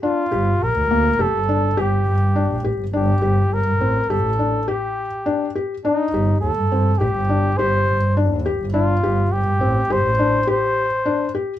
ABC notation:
X:1
M:5/4
L:1/16
Q:1/4=103
K:Cdor
V:1 name="Flugelhorn"
F4 B4 A4 G6 z2 | G4 B4 A4 G6 z2 | E4 A4 G4 c4 z4 | F4 G4 c4 c6 z2 |]
V:2 name="Felt piano"
D2 G4 B,2 G2 D2 G4 D2 G2 | D2 G4 C2 G2 D2 G4 D2 G2 | D2 G4 C2 G2 D2 G4 D2 G2 | D2 G4 C2 G2 D2 G4 D2 G2 |]
V:3 name="Double bass" clef=bass
z2 G,,,2 B,,, D,, D,,2 F,,, G,,,3 G,,, z G,,3 B,,, A,,, G,,, | G,,,2 G,,,2 G,,, G,, A,,,2 G,,, A,,,2 z8 z | z2 G,,,2 E,, G,, G,,2 A,,, G,,,3 G,,, z G,,3 E,,2 G,,,- | G,,,2 G,,,2 G,,, G,, A,,,2 G,,, A,,,2 z8 z |]